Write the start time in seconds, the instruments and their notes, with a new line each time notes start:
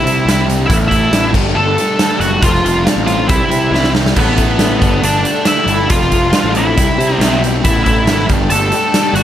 Already playing: lead electric guitar E4 E5
0.03 picked electric bass C3, distorted electric guitar C3 G3 C4 E4 G4, closed hi-hat
0.25 picked electric bass C2, distorted electric guitar G3 C4 E4 G4, snare, closed hi-hat
0.46 distorted electric guitar C4 E4 G4, closed hi-hat
0.66 picked electric bass A1, distorted electric guitar A3 B3, lead electric guitar E4 E5, kick
0.70 distorted electric guitar E4 A4, closed hi-hat
0.88 lead electric guitar E4 E5, kick, closed hi-hat
0.92 distorted electric guitar B3 E4 A4
1.11 picked electric bass A1, distorted electric guitar A3 B3 E4 A4, snare, closed hi-hat
1.33 picked electric bass G1, distorted electric guitar D4 A4, kick, crash
1.37 distorted electric guitar G3 A3
1.55 picked electric bass G1, distorted electric guitar G3 A3 D4 A4, lead electric guitar A4 A5
1.78 distorted electric guitar G3 A3 D4 A4, closed hi-hat
1.99 distorted electric guitar G3 A3 D4 A4, snare, closed hi-hat
2.20 picked electric bass F#1, distorted electric guitar A3 D4 A4, lead electric guitar F#4 F#5, closed hi-hat
2.42 picked electric bass F1, distorted electric guitar F3 C4 F4 A4, lead electric guitar F4 F5, kick, closed hi-hat
2.55 snare
2.63 picked electric bass F1, distorted electric guitar C4 F4 A4, closed hi-hat
2.85 distorted electric guitar F3 C4 F4 A4, snare, closed hi-hat
2.96 picked electric bass A1
3.06 distorted electric guitar F3 C4 F4 A4, lead electric guitar F4 F5, closed hi-hat
3.27 picked electric bass C2, distorted electric guitar C3 G3 C4 E4 G4, lead electric guitar E4 E5, kick, closed hi-hat
3.49 picked electric bass C3, distorted electric guitar C3 G3 C4 E4 G4, closed hi-hat
3.71 picked electric bass C2, distorted electric guitar G3 C4 E4 G4, snare
3.83 snare
3.93 distorted electric guitar C4 E4 G4, snare
4.06 snare
4.15 picked electric bass A1, distorted electric guitar A3 B3 E4 A4, lead electric guitar B3, string machine A4 E5 B5 E6, kick, crash
4.19 lead electric guitar B4
4.36 distorted electric guitar B3 E4 A4, kick, closed hi-hat
4.57 picked electric bass A1, distorted electric guitar A3 B3 E4, snare, closed hi-hat
4.62 distorted electric guitar A4
4.80 picked electric bass G1, distorted electric guitar G3 A3 D4 A4, string machine A4 D5 G5 D6, kick, closed hi-hat
5.02 picked electric bass G1, distorted electric guitar G3 A3 D4 A4, lead electric guitar D4 D5, closed hi-hat
5.23 distorted electric guitar G3 A3 D4 A4, closed hi-hat
5.44 distorted electric guitar G3 A3 D4 A4, lead electric guitar E4 E5, snare, closed hi-hat
5.67 picked electric bass G1, distorted electric guitar A3 D4 A4, closed hi-hat
5.89 picked electric bass F1, distorted electric guitar F3 C4 F4 A4, lead electric guitar F4 F5, kick, closed hi-hat
5.94 string machine F5 C6
6.01 snare
6.11 picked electric bass F1, distorted electric guitar C4 F4 A4, kick, closed hi-hat
6.32 distorted electric guitar F3 C4 F4 A4, snare, closed hi-hat
6.44 picked electric bass A1
6.54 distorted electric guitar F3 C4 F4 A4, lead electric guitar E5, closed hi-hat
6.58 lead electric guitar E4
6.77 picked electric bass C2, distorted electric guitar C3 G3 C4 E4 G4, string machine G4, kick, closed hi-hat
6.81 string machine E5 D6
6.98 picked electric bass C3, distorted electric guitar C3 G3 C4 E4 G4, closed hi-hat
7.16 picked electric bass B1, distorted electric guitar G3, lead electric guitar D5
7.21 distorted electric guitar C4 E4 G4, snare, closed hi-hat
7.42 distorted electric guitar C4 E4 G4, closed hi-hat
7.64 picked electric bass A1, distorted electric guitar A3 B3 E4 A4, lead electric guitar E4 E5, string machine A4 B5 E6, kick, closed hi-hat
7.84 distorted electric guitar B3 E4 A4, lead electric guitar E4 E5, kick, closed hi-hat
8.06 picked electric bass G#1, distorted electric guitar A3 B3, snare, closed hi-hat
8.10 distorted electric guitar E4 A4
8.29 picked electric bass G1, distorted electric guitar G3 A3 D4 G4, string machine A4 D5 G5, kick, closed hi-hat
8.33 string machine D6
8.50 picked electric bass G1, distorted electric guitar G3 A3 D4 G4, lead electric guitar A4 A5, closed hi-hat
8.72 distorted electric guitar A3 D4 G4, closed hi-hat
8.76 distorted electric guitar G3
8.94 distorted electric guitar G3 A3 D4 G4, snare, closed hi-hat
9.14 picked electric bass G1, distorted electric guitar D4 G4, lead electric guitar F#4 F#5, closed hi-hat
9.18 distorted electric guitar A3